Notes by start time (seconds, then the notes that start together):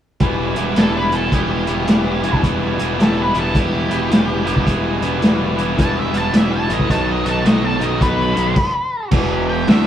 0.20 E1 E3 G3 B3 E4, kick, closed hi-hat
0.56 E1 E3 G3 B3 E4, closed hi-hat
0.76 E1 E3 G3 B3 E4 A4, snare, closed hi-hat
0.97 B4
1.12 E1 E3 G3 B3 E4 A4, closed hi-hat
1.32 E1 E3 G3 B3 E4 G4, kick, closed hi-hat
1.67 E1 E3 G3 B3 E4, closed hi-hat
1.87 E1 E3 G3 B3 E4, snare, closed hi-hat
2.23 E1 E3 G3 B3 E4, closed hi-hat
2.33 kick
2.43 E1 E3 G3 B3 E4, kick, closed hi-hat
2.79 E1 E3 G3 B3 E4, closed hi-hat
2.98 E1 E3 G3 B3 E4 A4, snare, closed hi-hat
3.22 B4
3.34 E1 E3 G3 B3 E4, closed hi-hat
3.39 A4
3.55 E1 E3 G3 B3 E4, kick, closed hi-hat
3.59 G4
3.90 E1 E3 G3 B3 E4, closed hi-hat
4.11 E1 E3 G3 B3 E4, snare, closed hi-hat
4.46 E1 E3 G3 B3 E4, closed hi-hat
4.57 kick
4.65 E1 E3 G3 B3 E4, kick, closed hi-hat
5.02 E1 E3 G3 B3 E4, closed hi-hat
5.22 E1 E3 G3 B3 E4, snare, closed hi-hat
5.57 E1 E3 G3 B3 E4, closed hi-hat
5.77 E1 E3 G3 B3 E4 A5, kick, closed hi-hat
5.99 E5
6.13 E1 E3 G3 B3 E4 A5, closed hi-hat
6.34 E1 E3 G3 B3 E4 E5, snare, closed hi-hat
6.56 A5
6.69 A1 E3 G3 B3 E4, closed hi-hat
6.73 D#5
6.80 kick
6.90 B1 B2 D#3 F#3 B3 D#4 A5, kick, closed hi-hat
7.11 D#5
7.24 B1 B2 D#3 F#3 B3 D#4, closed hi-hat
7.29 A5
7.44 B1 B2 D#3 F#3 B3 D#4 D#5, snare, closed hi-hat
7.64 A5
7.80 B1 B2 D#3 F#3 B3 D#4 D#5, closed hi-hat
8.00 B1 B2 D#3 F#3 B3 D#4 B4, kick, closed hi-hat
8.35 B1 B2 D#3 F#3 B3 D#4, closed hi-hat
8.56 kick, crash
9.11 E1 E2 B2 E3, kick, crash
9.49 G5
9.67 D2 D3 A3 D4 E5, snare, open hi-hat